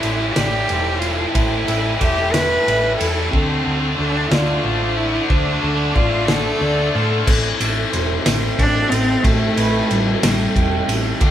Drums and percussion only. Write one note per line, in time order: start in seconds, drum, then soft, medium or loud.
0.03 ride medium
0.36 snare loud
0.36 ride medium
0.69 ride medium
1.02 ride medium
1.35 kick loud
1.35 ride medium
1.68 ride medium
2.01 kick medium
2.01 ride medium
2.34 snare loud
2.34 ride loud
2.68 ride medium
3.01 ride medium
3.33 kick loud
4.32 snare loud
5.30 kick loud
5.96 kick medium
6.28 snare loud
7.27 kick loud
7.27 crash loud
7.61 ride medium
7.93 ride medium
8.26 snare loud
8.26 ride loud
8.59 kick medium
8.59 ride medium
8.92 ride medium
9.24 kick loud
9.24 ride loud
9.57 ride medium
9.91 ride medium
10.23 snare loud
10.23 ride loud
10.56 kick medium
10.56 ride medium
10.89 ride medium
11.21 kick loud
11.21 ride loud